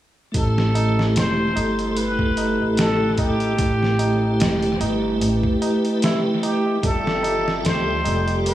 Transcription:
0.32 A1 A3 E4 G4, kick, closed hi-hat, tabla na
0.37 A4 C5
0.58 snare
0.75 closed hi-hat, tabla na
0.98 snare, tabla na
1.16 E1 C5, snare, closed hi-hat, tabla na
1.53 G1 A3 E4 G4, closed hi-hat, tabla na
1.58 A4
1.78 closed hi-hat, tabla na
1.91 C5
1.97 B4, closed hi-hat, tabla na
2.19 kick
2.37 closed hi-hat, tabla na
2.60 A1, tabla na
2.77 A4, snare, closed hi-hat, tabla na
3.18 G4, kick, closed hi-hat, tabla na
3.40 closed hi-hat, tabla na
3.56 A1 A3 E4 G4, kick, closed hi-hat
3.62 C5
3.83 snare
3.99 closed hi-hat, tabla na
4.22 tabla na
4.40 E1, snare, closed hi-hat, tabla na
4.62 closed hi-hat
4.78 G1 A3 E4 G4, closed hi-hat, tabla na
4.83 B4
5.03 tabla na
5.20 A1, closed hi-hat, tabla na
5.43 kick
5.62 closed hi-hat, tabla na
5.84 closed hi-hat, tabla na
6.02 E4, snare, closed hi-hat, tabla na
6.43 G4, closed hi-hat, tabla na
6.65 tabla na
6.81 G1 G3 F4 A4 D5, kick, closed hi-hat, tabla na
6.86 E5
7.07 snare
7.23 closed hi-hat, tabla na
7.46 snare, tabla na
7.64 D2 C5, snare, closed hi-hat, tabla na
8.03 F1 G3 F4 G4 A4, closed hi-hat, tabla na
8.08 D5
8.27 closed hi-hat, tabla na
8.46 B4, closed hi-hat, tabla na

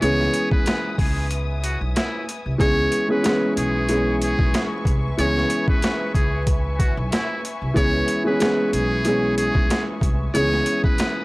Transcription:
Already playing: B4 E5 G#5
0.02 C#2 E3 G#3 B3 C#4 G#4 C#5 D#6, closed hi-hat
0.21 snare
0.34 closed hi-hat
0.51 B4, kick
0.66 snare, closed hi-hat
0.98 C#2 G#4, kick, open hi-hat
1.31 closed hi-hat
1.64 F#4, closed hi-hat
1.81 B1
1.96 E4, snare, closed hi-hat
2.29 closed hi-hat
2.46 C2
2.58 C#2 E3 G#3 B3 C#4 G#4 B4 C#5 E5 G#5 C#6, kick, closed hi-hat
2.92 closed hi-hat
3.08 E3 G#3 B3 C#4 G#4 B4
3.23 E3 G#3 B3 C#4 G#4, snare, closed hi-hat
3.56 B1 G#4, closed hi-hat
3.89 E3 G#3 B3 C#4 G#4, closed hi-hat
4.22 G#4, closed hi-hat
4.39 B1, kick
4.54 snare, closed hi-hat
4.85 C2, kick, closed hi-hat
5.17 C#2 E3 G#3 B3 C#4 G#4 C#5, closed hi-hat
5.37 snare
5.50 closed hi-hat
5.68 B4, kick
5.82 snare, closed hi-hat
6.14 C#2 G#4, kick, closed hi-hat
6.47 kick, closed hi-hat
6.78 F#4, kick, closed hi-hat
6.97 B1
7.12 E4, snare, closed hi-hat
7.45 closed hi-hat
7.62 C2
7.74 C#2 E3 G#3 B3 C#4 G#4 C#5 C#6, kick, closed hi-hat
8.08 closed hi-hat
8.24 E3 G#3 B3 C#4 G#4 B4
8.39 E3 G#3 B3 C#4 G#4, snare, closed hi-hat
8.73 B1 G#4, closed hi-hat
9.05 E3 G#3 B3 C#4 G#4, closed hi-hat
9.38 G#4, closed hi-hat
9.55 B1, kick
9.70 snare, closed hi-hat
10.01 C2, kick, closed hi-hat
10.34 C#2 E3 G#3 B3 C#4 G#4 C#5 D#6, closed hi-hat
10.53 snare
10.66 closed hi-hat
10.84 B4, kick
10.98 snare, closed hi-hat

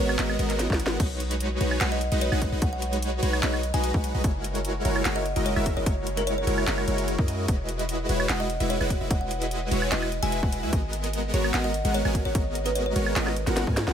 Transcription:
0.00 G#1 G#3 B3 F#4 A#4 C#5
0.09 high woodblock
0.19 G#1 G#3 B3 F#4 A#4 D#5, clap, closed hi-hat
0.30 high woodblock
0.39 G#1 G#3 B3 F#4 A#4 D#5, closed hi-hat
0.50 clap, closed hi-hat
0.59 snare, closed hi-hat
0.70 G#1 G#3 B3 F#4 A#4 F#5, kick, snare
0.80 closed hi-hat
0.86 snare
1.00 B1 G#3 D#4 F#4 B4 C#5, kick, closed hi-hat, crash
1.20 closed hi-hat
1.31 closed hi-hat
1.40 closed hi-hat
1.61 B1 G#3 D#4 F#4 B4 C#5, closed hi-hat
1.71 high woodblock
1.81 B1 G#3 D#4 F#4 B4 C#5 F#5, clap, closed hi-hat
1.92 D#5
2.01 closed hi-hat
2.12 B1 G#3 D#4 F#4 B4 D#5, closed hi-hat
2.21 C#5, closed hi-hat
2.32 B1 G#3 D#4 F#4 B4 F#5, high woodblock
2.42 kick, closed hi-hat
2.52 B1 G#3 D#4 F#4 B4 D#5
2.62 B1 G#3 D#4 F#4 B4 C#5 F#5, kick, closed hi-hat
2.73 F#5
2.82 closed hi-hat
2.93 closed hi-hat
3.02 closed hi-hat
3.23 B1 G#3 D#4 F#4 B4 C#5, closed hi-hat
3.33 high woodblock
3.43 B1 G#3 D#4 F#4 B4 C#5 D#5, clap, closed hi-hat
3.54 high woodblock
3.63 closed hi-hat
3.74 B1 G#3 D#4 F#4 B4 D#5 G#5, closed hi-hat
3.84 closed hi-hat
3.94 B1 G#3 D#4 F#4 B4 F#5, kick
4.04 closed hi-hat
4.14 B1 G#3 D#4 F#4 B4 D#5
4.24 F#1 G#3 E4 F#4 A#4 C#5, kick, closed hi-hat
4.44 closed hi-hat
4.55 closed hi-hat
4.65 closed hi-hat
4.85 F#1 G#3 E4 F#4 A#4 C#5, closed hi-hat
4.96 high woodblock
5.05 F#1 G#3 E4 F#4 A#4 C#5 F#5, clap, closed hi-hat
5.16 D#5
5.26 closed hi-hat
5.36 F#1 G#3 E4 F#4 A#4 D#5, closed hi-hat
5.46 C#5, closed hi-hat
5.56 F#1 G#3 E4 F#4 A#4 E5, high woodblock
5.66 kick, closed hi-hat
5.77 F#1 G#3 E4 F#4 A#4 C#5 D#5
5.86 F#1 G#3 E4 F#4 A#4 C#5, kick, closed hi-hat
6.07 closed hi-hat
6.17 A#4, closed hi-hat
6.27 C#5, closed hi-hat
6.38 C#5
6.47 F#1 G#3 E4 F#4 A#4 C#5, closed hi-hat
6.58 high woodblock
6.67 F#1 G#3 E4 F#4 A#4 C#5, clap, closed hi-hat
6.78 high woodblock
6.87 F#1 G#3 E4 F#4 A#4 C#5, closed hi-hat
6.98 closed hi-hat
7.08 closed hi-hat
7.18 F#2 G#3 E4 F#4 A#4 D#5, kick
7.28 closed hi-hat
7.48 E1 G#3 E4 F#4 B4 D#5, kick, closed hi-hat
7.69 closed hi-hat
7.79 closed hi-hat
7.89 closed hi-hat
8.09 E1 G#3 E4 F#4 B4 C#5, closed hi-hat
8.20 high woodblock
8.29 E1 G#3 E4 F#4 B4 D#5 F#5, clap, closed hi-hat
8.40 D#5
8.50 closed hi-hat
8.60 E1 G#3 E4 F#4 B4 E5, closed hi-hat
8.70 C#5, closed hi-hat
8.80 E1 G#3 E4 F#4 B4 F#5, high woodblock
8.90 kick, closed hi-hat
9.01 E1 G#3 E4 F#4 B4 E5
9.10 E1 G#3 E4 F#4 B4 D#5 F#5, kick, closed hi-hat
9.21 F#5
9.31 closed hi-hat
9.42 closed hi-hat
9.51 closed hi-hat
9.71 E1 G#3 E4 F#4 B4 C#5, closed hi-hat
9.82 high woodblock
9.92 E1 G#3 E4 F#4 B4 D#5, clap, closed hi-hat
10.02 high woodblock
10.12 closed hi-hat
10.22 E1 G#3 E4 F#4 B4 E5 G#5, closed hi-hat
10.32 closed hi-hat
10.43 E1 G#3 E4 F#4 B4 F#5, kick
10.52 closed hi-hat
10.63 E2 G#3 E4 F#4 B4 E5
10.73 G#1 G#3 B3 F#4 A#4 D#5, kick, closed hi-hat
10.93 closed hi-hat
11.04 closed hi-hat
11.13 closed hi-hat
11.34 G#1 G#3 B3 F#4 A#4 C#5, closed hi-hat
11.44 high woodblock
11.54 G#1 G#3 B3 F#4 A#4 D#5 F#5, clap, closed hi-hat
11.64 D#5
11.74 closed hi-hat
11.85 G#1 G#3 B3 F#4 A#4 F#5, closed hi-hat
11.94 C#5, closed hi-hat
12.05 G#1 G#3 B3 F#4 A#4 G#5, high woodblock
12.15 kick, closed hi-hat
12.25 G#1 G#3 B3 F#4 A#4 C#5 F#5
12.35 G#1 G#3 B3 F#4 A#4 D#5, kick, closed hi-hat
12.55 closed hi-hat
12.66 B4, closed hi-hat
12.75 C#5, closed hi-hat
12.86 C#5
12.96 G#1 G#3 B3 F#4 A#4 C#5, closed hi-hat
13.06 high woodblock
13.16 G#1 G#3 B3 F#4 A#4 D#5, snare, clap, closed hi-hat
13.27 snare, high woodblock
13.36 closed hi-hat
13.47 G#1 G#3 B3 F#4 A#4 F#5, snare, closed hi-hat
13.57 snare, closed hi-hat
13.67 G#2 G#3 B3 F#4 A#4 G#5, kick
13.77 snare, closed hi-hat
13.88 G#1 G#3 B3 F#4 A#4 F#5, snare

